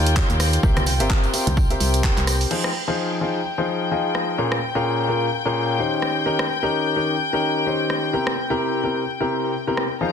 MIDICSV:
0, 0, Header, 1, 5, 480
1, 0, Start_track
1, 0, Key_signature, -4, "minor"
1, 0, Tempo, 468750
1, 648, Time_signature, 4, 2, 24, 8
1, 10363, End_track
2, 0, Start_track
2, 0, Title_t, "String section"
2, 0, Program_c, 0, 48
2, 0, Note_on_c, 0, 65, 87
2, 0, Note_on_c, 0, 79, 86
2, 2556, Note_off_c, 0, 79, 0
2, 2568, Note_on_c, 0, 79, 81
2, 2580, Note_off_c, 0, 65, 0
2, 10248, Note_on_c, 0, 70, 80
2, 10249, Note_on_c, 0, 82, 80
2, 10259, Note_off_c, 0, 79, 0
2, 10363, Note_off_c, 0, 70, 0
2, 10363, Note_off_c, 0, 82, 0
2, 10363, End_track
3, 0, Start_track
3, 0, Title_t, "Upright piano"
3, 0, Program_c, 1, 0
3, 0, Note_on_c, 1, 51, 90
3, 0, Note_on_c, 1, 67, 81
3, 0, Note_on_c, 1, 70, 82
3, 0, Note_on_c, 1, 73, 79
3, 0, Note_on_c, 1, 75, 96
3, 144, Note_off_c, 1, 51, 0
3, 144, Note_off_c, 1, 67, 0
3, 144, Note_off_c, 1, 70, 0
3, 144, Note_off_c, 1, 73, 0
3, 144, Note_off_c, 1, 75, 0
3, 648, Note_on_c, 1, 60, 83
3, 648, Note_on_c, 1, 67, 74
3, 648, Note_on_c, 1, 70, 75
3, 648, Note_on_c, 1, 72, 77
3, 648, Note_on_c, 1, 76, 94
3, 826, Note_off_c, 1, 60, 0
3, 826, Note_off_c, 1, 67, 0
3, 826, Note_off_c, 1, 70, 0
3, 826, Note_off_c, 1, 72, 0
3, 826, Note_off_c, 1, 76, 0
3, 1026, Note_on_c, 1, 60, 92
3, 1026, Note_on_c, 1, 67, 87
3, 1026, Note_on_c, 1, 70, 86
3, 1026, Note_on_c, 1, 72, 86
3, 1026, Note_on_c, 1, 76, 107
3, 1344, Note_off_c, 1, 60, 0
3, 1344, Note_off_c, 1, 67, 0
3, 1344, Note_off_c, 1, 70, 0
3, 1344, Note_off_c, 1, 72, 0
3, 1344, Note_off_c, 1, 76, 0
3, 1369, Note_on_c, 1, 60, 76
3, 1369, Note_on_c, 1, 67, 70
3, 1369, Note_on_c, 1, 70, 70
3, 1369, Note_on_c, 1, 72, 71
3, 1369, Note_on_c, 1, 76, 83
3, 1546, Note_off_c, 1, 60, 0
3, 1546, Note_off_c, 1, 67, 0
3, 1546, Note_off_c, 1, 70, 0
3, 1546, Note_off_c, 1, 72, 0
3, 1546, Note_off_c, 1, 76, 0
3, 1746, Note_on_c, 1, 60, 87
3, 1746, Note_on_c, 1, 67, 80
3, 1746, Note_on_c, 1, 70, 78
3, 1746, Note_on_c, 1, 72, 81
3, 1746, Note_on_c, 1, 76, 98
3, 2064, Note_off_c, 1, 60, 0
3, 2064, Note_off_c, 1, 67, 0
3, 2064, Note_off_c, 1, 70, 0
3, 2064, Note_off_c, 1, 72, 0
3, 2064, Note_off_c, 1, 76, 0
3, 2088, Note_on_c, 1, 60, 76
3, 2088, Note_on_c, 1, 67, 70
3, 2088, Note_on_c, 1, 70, 69
3, 2544, Note_off_c, 1, 60, 0
3, 2544, Note_off_c, 1, 67, 0
3, 2544, Note_off_c, 1, 70, 0
3, 2568, Note_on_c, 1, 53, 79
3, 2568, Note_on_c, 1, 63, 71
3, 2568, Note_on_c, 1, 65, 71
3, 2568, Note_on_c, 1, 68, 72
3, 2568, Note_on_c, 1, 72, 85
3, 2746, Note_off_c, 1, 53, 0
3, 2746, Note_off_c, 1, 63, 0
3, 2746, Note_off_c, 1, 65, 0
3, 2746, Note_off_c, 1, 68, 0
3, 2746, Note_off_c, 1, 72, 0
3, 2946, Note_on_c, 1, 53, 89
3, 2946, Note_on_c, 1, 63, 80
3, 2946, Note_on_c, 1, 65, 81
3, 2946, Note_on_c, 1, 68, 83
3, 2946, Note_on_c, 1, 72, 97
3, 3264, Note_off_c, 1, 53, 0
3, 3264, Note_off_c, 1, 63, 0
3, 3264, Note_off_c, 1, 65, 0
3, 3264, Note_off_c, 1, 68, 0
3, 3264, Note_off_c, 1, 72, 0
3, 3288, Note_on_c, 1, 53, 72
3, 3288, Note_on_c, 1, 63, 67
3, 3288, Note_on_c, 1, 65, 65
3, 3288, Note_on_c, 1, 68, 66
3, 3288, Note_on_c, 1, 72, 78
3, 3466, Note_off_c, 1, 53, 0
3, 3466, Note_off_c, 1, 63, 0
3, 3466, Note_off_c, 1, 65, 0
3, 3466, Note_off_c, 1, 68, 0
3, 3466, Note_off_c, 1, 72, 0
3, 3666, Note_on_c, 1, 53, 81
3, 3666, Note_on_c, 1, 63, 74
3, 3666, Note_on_c, 1, 65, 75
3, 3666, Note_on_c, 1, 68, 74
3, 3666, Note_on_c, 1, 72, 90
3, 3984, Note_off_c, 1, 53, 0
3, 3984, Note_off_c, 1, 63, 0
3, 3984, Note_off_c, 1, 65, 0
3, 3984, Note_off_c, 1, 68, 0
3, 3984, Note_off_c, 1, 72, 0
3, 4008, Note_on_c, 1, 53, 70
3, 4008, Note_on_c, 1, 63, 65
3, 4008, Note_on_c, 1, 65, 67
3, 4008, Note_on_c, 1, 68, 67
3, 4009, Note_on_c, 1, 75, 78
3, 4464, Note_off_c, 1, 53, 0
3, 4464, Note_off_c, 1, 63, 0
3, 4464, Note_off_c, 1, 65, 0
3, 4464, Note_off_c, 1, 68, 0
3, 4464, Note_off_c, 1, 75, 0
3, 4488, Note_on_c, 1, 68, 72
3, 4489, Note_on_c, 1, 46, 79
3, 4489, Note_on_c, 1, 61, 71
3, 4489, Note_on_c, 1, 65, 72
3, 4489, Note_on_c, 1, 70, 87
3, 4666, Note_off_c, 1, 46, 0
3, 4666, Note_off_c, 1, 61, 0
3, 4666, Note_off_c, 1, 65, 0
3, 4666, Note_off_c, 1, 68, 0
3, 4666, Note_off_c, 1, 70, 0
3, 4866, Note_on_c, 1, 61, 82
3, 4866, Note_on_c, 1, 65, 83
3, 4866, Note_on_c, 1, 68, 82
3, 4867, Note_on_c, 1, 46, 89
3, 4867, Note_on_c, 1, 70, 98
3, 5184, Note_off_c, 1, 46, 0
3, 5184, Note_off_c, 1, 61, 0
3, 5184, Note_off_c, 1, 65, 0
3, 5184, Note_off_c, 1, 68, 0
3, 5184, Note_off_c, 1, 70, 0
3, 5208, Note_on_c, 1, 46, 72
3, 5209, Note_on_c, 1, 61, 65
3, 5209, Note_on_c, 1, 65, 64
3, 5209, Note_on_c, 1, 68, 66
3, 5209, Note_on_c, 1, 70, 81
3, 5386, Note_off_c, 1, 46, 0
3, 5386, Note_off_c, 1, 61, 0
3, 5386, Note_off_c, 1, 65, 0
3, 5386, Note_off_c, 1, 68, 0
3, 5386, Note_off_c, 1, 70, 0
3, 5586, Note_on_c, 1, 46, 84
3, 5586, Note_on_c, 1, 61, 76
3, 5586, Note_on_c, 1, 65, 78
3, 5586, Note_on_c, 1, 68, 74
3, 5586, Note_on_c, 1, 70, 93
3, 5904, Note_off_c, 1, 46, 0
3, 5904, Note_off_c, 1, 61, 0
3, 5904, Note_off_c, 1, 65, 0
3, 5904, Note_off_c, 1, 68, 0
3, 5904, Note_off_c, 1, 70, 0
3, 5928, Note_on_c, 1, 51, 73
3, 5928, Note_on_c, 1, 61, 67
3, 5928, Note_on_c, 1, 63, 65
3, 5928, Note_on_c, 1, 67, 66
3, 5928, Note_on_c, 1, 72, 81
3, 6384, Note_off_c, 1, 51, 0
3, 6384, Note_off_c, 1, 61, 0
3, 6384, Note_off_c, 1, 63, 0
3, 6384, Note_off_c, 1, 67, 0
3, 6384, Note_off_c, 1, 72, 0
3, 6408, Note_on_c, 1, 51, 79
3, 6408, Note_on_c, 1, 61, 73
3, 6408, Note_on_c, 1, 63, 71
3, 6408, Note_on_c, 1, 67, 73
3, 6408, Note_on_c, 1, 70, 88
3, 6586, Note_off_c, 1, 51, 0
3, 6586, Note_off_c, 1, 61, 0
3, 6586, Note_off_c, 1, 63, 0
3, 6586, Note_off_c, 1, 67, 0
3, 6586, Note_off_c, 1, 70, 0
3, 6786, Note_on_c, 1, 51, 89
3, 6786, Note_on_c, 1, 61, 80
3, 6786, Note_on_c, 1, 63, 82
3, 6786, Note_on_c, 1, 70, 97
3, 6787, Note_on_c, 1, 67, 82
3, 7104, Note_off_c, 1, 51, 0
3, 7104, Note_off_c, 1, 61, 0
3, 7104, Note_off_c, 1, 63, 0
3, 7104, Note_off_c, 1, 67, 0
3, 7104, Note_off_c, 1, 70, 0
3, 7129, Note_on_c, 1, 51, 72
3, 7129, Note_on_c, 1, 61, 67
3, 7129, Note_on_c, 1, 63, 66
3, 7129, Note_on_c, 1, 67, 67
3, 7129, Note_on_c, 1, 70, 79
3, 7306, Note_off_c, 1, 51, 0
3, 7306, Note_off_c, 1, 61, 0
3, 7306, Note_off_c, 1, 63, 0
3, 7306, Note_off_c, 1, 67, 0
3, 7306, Note_off_c, 1, 70, 0
3, 7506, Note_on_c, 1, 51, 83
3, 7506, Note_on_c, 1, 61, 77
3, 7506, Note_on_c, 1, 63, 76
3, 7506, Note_on_c, 1, 67, 76
3, 7506, Note_on_c, 1, 70, 91
3, 7824, Note_off_c, 1, 51, 0
3, 7824, Note_off_c, 1, 61, 0
3, 7824, Note_off_c, 1, 63, 0
3, 7824, Note_off_c, 1, 67, 0
3, 7824, Note_off_c, 1, 70, 0
3, 7848, Note_on_c, 1, 51, 72
3, 7848, Note_on_c, 1, 63, 65
3, 7848, Note_on_c, 1, 67, 67
3, 7848, Note_on_c, 1, 72, 80
3, 7849, Note_on_c, 1, 61, 68
3, 8304, Note_off_c, 1, 51, 0
3, 8304, Note_off_c, 1, 61, 0
3, 8304, Note_off_c, 1, 63, 0
3, 8304, Note_off_c, 1, 67, 0
3, 8304, Note_off_c, 1, 72, 0
3, 8328, Note_on_c, 1, 64, 71
3, 8328, Note_on_c, 1, 70, 86
3, 8329, Note_on_c, 1, 48, 81
3, 8329, Note_on_c, 1, 60, 73
3, 8329, Note_on_c, 1, 67, 73
3, 8506, Note_off_c, 1, 48, 0
3, 8506, Note_off_c, 1, 60, 0
3, 8506, Note_off_c, 1, 64, 0
3, 8506, Note_off_c, 1, 67, 0
3, 8506, Note_off_c, 1, 70, 0
3, 8706, Note_on_c, 1, 48, 89
3, 8706, Note_on_c, 1, 60, 84
3, 8706, Note_on_c, 1, 64, 84
3, 8706, Note_on_c, 1, 67, 79
3, 8706, Note_on_c, 1, 70, 100
3, 9024, Note_off_c, 1, 48, 0
3, 9024, Note_off_c, 1, 60, 0
3, 9024, Note_off_c, 1, 64, 0
3, 9024, Note_off_c, 1, 67, 0
3, 9024, Note_off_c, 1, 70, 0
3, 9048, Note_on_c, 1, 48, 72
3, 9048, Note_on_c, 1, 60, 65
3, 9048, Note_on_c, 1, 64, 64
3, 9048, Note_on_c, 1, 67, 66
3, 9048, Note_on_c, 1, 70, 81
3, 9226, Note_off_c, 1, 48, 0
3, 9226, Note_off_c, 1, 60, 0
3, 9226, Note_off_c, 1, 64, 0
3, 9226, Note_off_c, 1, 67, 0
3, 9226, Note_off_c, 1, 70, 0
3, 9426, Note_on_c, 1, 48, 84
3, 9426, Note_on_c, 1, 60, 75
3, 9426, Note_on_c, 1, 64, 77
3, 9426, Note_on_c, 1, 67, 76
3, 9426, Note_on_c, 1, 70, 91
3, 9744, Note_off_c, 1, 48, 0
3, 9744, Note_off_c, 1, 60, 0
3, 9744, Note_off_c, 1, 64, 0
3, 9744, Note_off_c, 1, 67, 0
3, 9744, Note_off_c, 1, 70, 0
3, 9906, Note_on_c, 1, 48, 78
3, 9906, Note_on_c, 1, 60, 71
3, 9906, Note_on_c, 1, 64, 70
3, 9906, Note_on_c, 1, 67, 71
3, 9906, Note_on_c, 1, 70, 84
3, 10062, Note_off_c, 1, 48, 0
3, 10062, Note_off_c, 1, 60, 0
3, 10062, Note_off_c, 1, 64, 0
3, 10062, Note_off_c, 1, 67, 0
3, 10062, Note_off_c, 1, 70, 0
3, 10248, Note_on_c, 1, 53, 79
3, 10248, Note_on_c, 1, 63, 72
3, 10248, Note_on_c, 1, 65, 74
3, 10248, Note_on_c, 1, 68, 71
3, 10248, Note_on_c, 1, 72, 85
3, 10363, Note_off_c, 1, 53, 0
3, 10363, Note_off_c, 1, 63, 0
3, 10363, Note_off_c, 1, 65, 0
3, 10363, Note_off_c, 1, 68, 0
3, 10363, Note_off_c, 1, 72, 0
3, 10363, End_track
4, 0, Start_track
4, 0, Title_t, "FM bass"
4, 0, Program_c, 2, 39
4, 0, Note_on_c, 2, 39, 100
4, 241, Note_off_c, 2, 39, 0
4, 305, Note_on_c, 2, 39, 89
4, 600, Note_off_c, 2, 39, 0
4, 648, Note_on_c, 2, 36, 101
4, 1026, Note_on_c, 2, 31, 88
4, 1041, Note_off_c, 2, 36, 0
4, 1320, Note_off_c, 2, 31, 0
4, 1506, Note_on_c, 2, 36, 102
4, 1800, Note_off_c, 2, 36, 0
4, 1848, Note_on_c, 2, 36, 102
4, 2161, Note_off_c, 2, 36, 0
4, 2226, Note_on_c, 2, 36, 88
4, 2520, Note_off_c, 2, 36, 0
4, 10363, End_track
5, 0, Start_track
5, 0, Title_t, "Drums"
5, 66, Note_on_c, 9, 42, 67
5, 73, Note_on_c, 9, 54, 36
5, 167, Note_off_c, 9, 54, 0
5, 167, Note_on_c, 9, 54, 52
5, 168, Note_on_c, 9, 36, 102
5, 169, Note_off_c, 9, 42, 0
5, 170, Note_on_c, 9, 39, 116
5, 270, Note_off_c, 9, 54, 0
5, 271, Note_off_c, 9, 36, 0
5, 273, Note_off_c, 9, 39, 0
5, 304, Note_on_c, 9, 54, 28
5, 306, Note_on_c, 9, 42, 56
5, 407, Note_off_c, 9, 54, 0
5, 408, Note_off_c, 9, 42, 0
5, 408, Note_on_c, 9, 37, 64
5, 408, Note_on_c, 9, 46, 103
5, 408, Note_on_c, 9, 54, 82
5, 510, Note_off_c, 9, 54, 0
5, 511, Note_off_c, 9, 37, 0
5, 511, Note_off_c, 9, 46, 0
5, 546, Note_on_c, 9, 42, 69
5, 550, Note_on_c, 9, 54, 40
5, 648, Note_off_c, 9, 42, 0
5, 648, Note_on_c, 9, 36, 115
5, 652, Note_off_c, 9, 54, 0
5, 654, Note_on_c, 9, 54, 50
5, 751, Note_off_c, 9, 36, 0
5, 756, Note_off_c, 9, 54, 0
5, 784, Note_on_c, 9, 63, 98
5, 785, Note_on_c, 9, 54, 27
5, 786, Note_on_c, 9, 37, 81
5, 786, Note_on_c, 9, 42, 38
5, 884, Note_off_c, 9, 54, 0
5, 884, Note_on_c, 9, 54, 94
5, 886, Note_off_c, 9, 63, 0
5, 888, Note_off_c, 9, 37, 0
5, 888, Note_off_c, 9, 42, 0
5, 888, Note_on_c, 9, 46, 100
5, 986, Note_off_c, 9, 54, 0
5, 991, Note_off_c, 9, 46, 0
5, 1023, Note_on_c, 9, 54, 36
5, 1026, Note_on_c, 9, 42, 69
5, 1125, Note_off_c, 9, 54, 0
5, 1127, Note_on_c, 9, 54, 52
5, 1128, Note_off_c, 9, 42, 0
5, 1128, Note_on_c, 9, 36, 102
5, 1130, Note_on_c, 9, 39, 123
5, 1230, Note_off_c, 9, 54, 0
5, 1231, Note_off_c, 9, 36, 0
5, 1233, Note_off_c, 9, 39, 0
5, 1266, Note_on_c, 9, 42, 39
5, 1269, Note_on_c, 9, 54, 26
5, 1368, Note_on_c, 9, 46, 103
5, 1369, Note_off_c, 9, 42, 0
5, 1370, Note_off_c, 9, 54, 0
5, 1370, Note_on_c, 9, 54, 94
5, 1470, Note_off_c, 9, 46, 0
5, 1472, Note_off_c, 9, 54, 0
5, 1506, Note_on_c, 9, 42, 69
5, 1506, Note_on_c, 9, 63, 98
5, 1507, Note_on_c, 9, 54, 35
5, 1608, Note_off_c, 9, 42, 0
5, 1608, Note_off_c, 9, 54, 0
5, 1608, Note_off_c, 9, 63, 0
5, 1608, Note_on_c, 9, 36, 117
5, 1608, Note_on_c, 9, 54, 53
5, 1710, Note_off_c, 9, 54, 0
5, 1711, Note_off_c, 9, 36, 0
5, 1746, Note_on_c, 9, 42, 57
5, 1746, Note_on_c, 9, 54, 24
5, 1848, Note_off_c, 9, 42, 0
5, 1848, Note_off_c, 9, 54, 0
5, 1848, Note_on_c, 9, 46, 103
5, 1849, Note_on_c, 9, 54, 87
5, 1950, Note_off_c, 9, 46, 0
5, 1952, Note_off_c, 9, 54, 0
5, 1986, Note_on_c, 9, 42, 72
5, 1989, Note_on_c, 9, 54, 41
5, 2088, Note_off_c, 9, 42, 0
5, 2089, Note_on_c, 9, 36, 101
5, 2090, Note_on_c, 9, 39, 121
5, 2091, Note_off_c, 9, 54, 0
5, 2191, Note_off_c, 9, 36, 0
5, 2193, Note_off_c, 9, 39, 0
5, 2226, Note_on_c, 9, 42, 57
5, 2227, Note_on_c, 9, 54, 23
5, 2228, Note_on_c, 9, 39, 36
5, 2327, Note_off_c, 9, 54, 0
5, 2327, Note_on_c, 9, 54, 82
5, 2328, Note_off_c, 9, 42, 0
5, 2328, Note_on_c, 9, 37, 60
5, 2328, Note_on_c, 9, 46, 103
5, 2331, Note_off_c, 9, 39, 0
5, 2429, Note_off_c, 9, 54, 0
5, 2431, Note_off_c, 9, 37, 0
5, 2431, Note_off_c, 9, 46, 0
5, 2465, Note_on_c, 9, 54, 41
5, 2466, Note_on_c, 9, 46, 60
5, 2567, Note_off_c, 9, 54, 0
5, 2569, Note_off_c, 9, 46, 0
5, 2569, Note_on_c, 9, 49, 78
5, 2671, Note_off_c, 9, 49, 0
5, 2706, Note_on_c, 9, 37, 75
5, 2809, Note_off_c, 9, 37, 0
5, 4248, Note_on_c, 9, 37, 57
5, 4351, Note_off_c, 9, 37, 0
5, 4626, Note_on_c, 9, 37, 74
5, 4728, Note_off_c, 9, 37, 0
5, 6168, Note_on_c, 9, 37, 57
5, 6271, Note_off_c, 9, 37, 0
5, 6546, Note_on_c, 9, 37, 80
5, 6648, Note_off_c, 9, 37, 0
5, 8088, Note_on_c, 9, 37, 57
5, 8191, Note_off_c, 9, 37, 0
5, 8466, Note_on_c, 9, 37, 80
5, 8569, Note_off_c, 9, 37, 0
5, 10008, Note_on_c, 9, 37, 59
5, 10111, Note_off_c, 9, 37, 0
5, 10363, End_track
0, 0, End_of_file